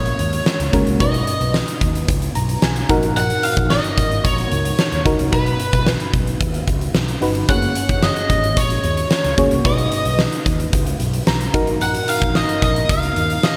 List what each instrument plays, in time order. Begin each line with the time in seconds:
Already playing: fretless electric bass A#1, fm electric piano G#3 A#3 C#4 F#4 A#4, lead electric guitar C#5, synth bell C#6
0.06 closed hi-hat
0.19 fretless electric bass D#2, closed hi-hat
0.33 closed hi-hat
0.46 snare, tambourine
0.60 fretless electric bass C#2, closed hi-hat
0.72 fretless electric bass C#2, fm electric piano G#3 A#3 C#4 F#4 A#4, kick, closed hi-hat
0.87 fretless electric bass C2, closed hi-hat
1.00 fretless electric bass B1, fm electric piano B2 D#4 F#4 B4, lead electric guitar D#5, synth bell D#6, kick, closed hi-hat
1.14 closed hi-hat
1.27 closed hi-hat
1.41 fretless electric bass B1, closed hi-hat
1.54 snare, tambourine
1.68 closed hi-hat
1.81 fretless electric bass D#2, kick, closed hi-hat
1.95 closed hi-hat
2.08 fretless electric bass C#2, kick, closed hi-hat
2.22 closed hi-hat
2.35 fretless electric bass B1, fm electric piano A#5, closed hi-hat
2.49 closed hi-hat
2.62 fretless electric bass B1, fm electric piano G#5, snare, tambourine
2.76 closed hi-hat
2.89 fretless electric bass A#1, fm electric piano A#2 D#4 F#4 A#4 F#5, kick, closed hi-hat
3.03 closed hi-hat
3.16 lead electric guitar F#5, synth bell F#6, closed hi-hat
3.30 closed hi-hat
3.43 lead electric guitar F5, synth bell F6, closed hi-hat
3.57 fretless electric bass A#1, kick, closed hi-hat
3.70 lead electric guitar D#5, synth bell D#6, snare, tambourine
3.84 closed hi-hat
3.98 fretless electric bass G#1, kick, closed hi-hat
4.12 closed hi-hat
4.24 fretless electric bass A#1, lead electric guitar C#5, synth bell C#6, kick, closed hi-hat
4.38 closed hi-hat
4.52 fretless electric bass C#2, closed hi-hat
4.65 closed hi-hat
4.79 snare, tambourine
4.92 fretless electric bass D#2, closed hi-hat
5.05 fretless electric bass C#2, fm electric piano D#4 F#4 A#4, kick, closed hi-hat
5.19 fretless electric bass C2, closed hi-hat
5.32 fretless electric bass B1, fm electric piano B2 D#4 F#4 B4, lead electric guitar B4, synth bell B5, kick, closed hi-hat
5.46 closed hi-hat
5.60 closed hi-hat
5.73 fretless electric bass B1, kick, closed hi-hat
5.86 snare, tambourine
6.00 closed hi-hat
6.14 fretless electric bass B1, kick, closed hi-hat
6.27 closed hi-hat
6.41 fretless electric bass D#2, kick, closed hi-hat
6.54 closed hi-hat
6.68 fretless electric bass C#2, kick, closed hi-hat
6.81 closed hi-hat
6.94 fretless electric bass B1, snare, tambourine
7.08 closed hi-hat
7.21 fretless electric bass G1, fm electric piano D#4 F#4 B4, open hi-hat
7.35 closed hi-hat
7.49 fretless electric bass F#1, fm electric piano A3 C#4 F#4 G#4 C#5, lead electric guitar F#5, synth bell F#6, kick, closed hi-hat
7.55 fm electric piano A#3
7.62 closed hi-hat
7.75 closed hi-hat
7.89 fretless electric bass F#1, kick, closed hi-hat
8.02 lead electric guitar D#5, synth bell D#6, snare, tambourine
8.16 closed hi-hat
8.30 fretless electric bass G#1, kick, closed hi-hat
8.44 closed hi-hat
8.57 fretless electric bass A#1, lead electric guitar C#5, synth bell C#6, kick, closed hi-hat
8.70 closed hi-hat
8.84 fretless electric bass D#2, closed hi-hat
8.97 closed hi-hat
9.11 snare, tambourine
9.24 fretless electric bass C#2, closed hi-hat
9.38 fretless electric bass C#2, fm electric piano A#3 C#4 F#4 G#4 C#5, kick, closed hi-hat
9.51 fretless electric bass C2, closed hi-hat
9.65 fretless electric bass B1, fm electric piano B2 D#4 F#4 B4, lead electric guitar D#5, synth bell D#6, kick, closed hi-hat
9.78 closed hi-hat
9.92 closed hi-hat
10.05 fretless electric bass B1, closed hi-hat
10.19 snare, tambourine
10.32 closed hi-hat
10.46 fretless electric bass D#2, kick, closed hi-hat
10.60 closed hi-hat
10.73 fretless electric bass C#2, kick, closed hi-hat
10.87 closed hi-hat
11.00 fretless electric bass B1, closed hi-hat
11.14 closed hi-hat
11.27 fretless electric bass B1, fm electric piano A#5, snare, tambourine
11.41 closed hi-hat
11.54 fretless electric bass A#1, fm electric piano A#2 D#4 F#4 A#4, kick, closed hi-hat
11.67 closed hi-hat
11.81 lead electric guitar F#5, synth bell F#6, closed hi-hat
11.95 closed hi-hat
12.08 lead electric guitar F5, synth bell F6, closed hi-hat
12.22 fretless electric bass A#1, kick, closed hi-hat
12.35 lead electric guitar D#5, synth bell D#6, snare, tambourine
12.49 closed hi-hat
12.62 fretless electric bass A#1, lead electric guitar D#5, synth bell D#6, kick, closed hi-hat
12.76 closed hi-hat
12.89 fretless electric bass C#2, lead electric guitar F5, synth bell F6, kick, closed hi-hat
13.03 closed hi-hat
13.16 fretless electric bass D#2, closed hi-hat
13.30 closed hi-hat
13.43 lead electric guitar D#5, synth bell D#6, snare, tambourine